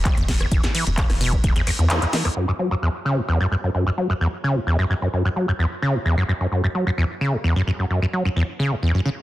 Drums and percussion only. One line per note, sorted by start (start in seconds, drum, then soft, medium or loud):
0.05 kick loud
0.05 snare loud
0.05 clap loud
0.05 closed hi-hat medium
0.05 ride medium
0.05 shaker medium
0.17 closed hi-hat medium
0.28 kick medium
0.28 snare medium
0.28 open hi-hat loud
0.28 ride medium
0.40 cross-stick medium
0.40 closed hi-hat soft
0.51 kick loud
0.51 closed hi-hat medium
0.51 ride medium
0.51 shaker medium
0.63 snare soft
0.63 snare medium
0.63 closed hi-hat medium
0.75 open hi-hat loud
0.75 ride medium
0.87 closed hi-hat soft
0.97 kick loud
0.97 snare loud
0.97 clap loud
0.97 closed hi-hat medium
0.97 ride medium
0.97 shaker loud
1.10 cross-stick medium
1.10 snare soft
1.10 open hi-hat medium
1.21 open hi-hat loud
1.21 ride medium
1.33 kick medium
1.44 kick loud
1.44 closed hi-hat medium
1.44 ride medium
1.44 shaker medium
1.55 snare soft
1.55 closed hi-hat medium
1.67 cross-stick soft
1.67 open hi-hat loud
1.67 ride medium
1.67 shaker medium
1.90 snare loud
1.90 clap loud
1.90 closed hi-hat medium
1.90 ride medium
1.90 shaker medium
2.02 clap soft
2.02 closed hi-hat medium
2.13 snare medium
2.13 open hi-hat loud
2.13 ride medium
2.13 shaker medium
2.25 cross-stick medium
2.25 open hi-hat medium